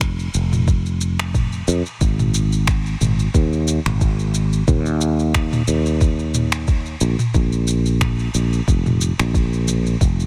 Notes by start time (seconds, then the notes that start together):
Already playing: F1
0.01 finger snap, kick, shaker
0.19 shaker
0.34 F1, shaker
0.53 mid tom, shaker
0.68 kick, shaker
0.86 shaker
1.01 shaker
1.19 finger snap, shaker
1.34 kick, mid tom, shaker
1.53 shaker
1.68 F2, shaker
1.86 shaker
2.01 G#1, kick, shaker
2.19 mid tom, shaker
2.34 shaker
2.53 shaker
2.67 finger snap, kick, shaker
2.86 shaker
3.01 G#1, mid tom, shaker
3.19 shaker
3.34 D#2, kick, shaker
3.53 shaker
3.68 shaker
3.86 G#1, finger snap, mid tom, shaker
4.01 kick, shaker
4.19 shaker
4.34 shaker
4.53 shaker
4.68 D#2, kick, mid tom, shaker
4.86 shaker
5.01 shaker
5.19 shaker
5.34 finger snap, kick, shaker
5.53 mid tom, shaker
5.68 D#2, shaker
5.86 shaker
6.01 kick, shaker
6.19 shaker
6.34 mid tom, shaker
6.52 finger snap, shaker
6.67 kick, shaker
6.86 shaker
7.01 A#1, shaker
7.19 mid tom, shaker
7.34 A#1, kick, shaker
7.53 shaker
7.67 shaker
7.86 shaker
8.01 finger snap, kick, mid tom, shaker
8.19 shaker
8.34 A#1, shaker
8.53 shaker
8.68 F1, kick, shaker
8.86 mid tom, shaker
9.01 shaker
9.19 A#1, finger snap, shaker
9.34 kick, shaker
9.53 shaker
9.68 mid tom, shaker
9.86 shaker
10.01 F1, kick, shaker
10.20 shaker